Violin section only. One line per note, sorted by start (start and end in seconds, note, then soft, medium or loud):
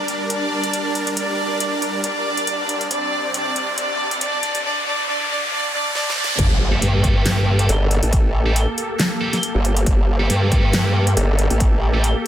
0.00 0.22 D4 medium
0.00 0.22 D5 medium
0.30 1.09 D4 medium
0.30 1.09 D5 loud
1.17 1.96 D4 medium
1.17 1.96 D5 loud
2.04 2.83 D4 medium
2.04 2.83 D5 loud
2.91 3.33 D4 medium
2.91 3.33 D5 loud
3.34 3.76 D4 medium
3.34 3.76 D5 loud
3.78 4.20 D4 medium
3.78 4.20 D5 loud
4.21 4.63 D4 medium
4.21 4.63 D5 loud
4.65 4.85 D4 medium
4.65 4.85 D5 loud
4.86 5.07 D4 medium
4.86 5.07 D5 loud
5.08 5.28 D4 medium
5.08 5.28 D5 loud
5.30 5.50 D4 medium
5.30 5.50 D5 loud
5.52 5.72 D4 medium
5.52 5.72 D5 loud
5.73 5.94 D4 medium
5.73 5.94 D5 loud
5.95 6.15 D4 medium
5.95 6.15 D5 loud
6.17 6.37 D4 medium
6.17 6.37 D5 loud